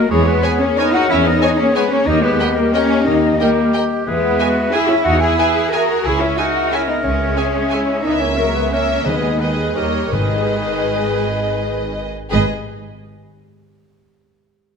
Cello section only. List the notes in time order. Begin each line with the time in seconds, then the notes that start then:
Already playing: A#3
0.11 G#3
0.28 B3
0.61 C#4
0.78 D#4
0.95 F#4
1.10 E4
1.25 D#4
1.59 C#4
1.75 B3
1.91 C#4
2.07 D#4
2.23 B3
2.58 A#3
2.74 C#4
3.06 D#4
3.40 A#3
4.08 B3
4.74 G#4
4.90 E4
5.06 F#4
5.22 G#4
5.73 A#4
6.05 G#4
6.22 E4
6.38 F#4
6.73 E4
6.89 D#4
7.05 C#4
8.05 D#4
8.20 C#4
8.38 A#3
8.55 B3
8.73 C#4
9.06 B3
9.40 G#3
9.76 G3
10.12 G#3
12.32 G#3